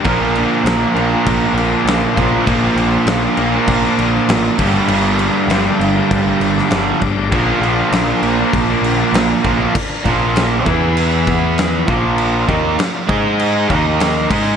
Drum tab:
CC |x-x-x-x-x-x-x-x-|x-x-x-x-x-x-x-x-|x-x-x-x-x-x-x-x-|x-x-x-x-x-x-x-x-|
SD |----o-------o---|----o-------o---|----o------oo---|----o-------o---|
BD |o-------o-----o-|o-------o-----o-|--------o-----o-|o-------o-----o-|

CC |x-x-x-x-x-x-x-x-|x-x-x-x-x-x-x-x-|
SD |----o-------o---|----o-------o---|
BD |o-o---o---o---o-|--o---o---o---o-|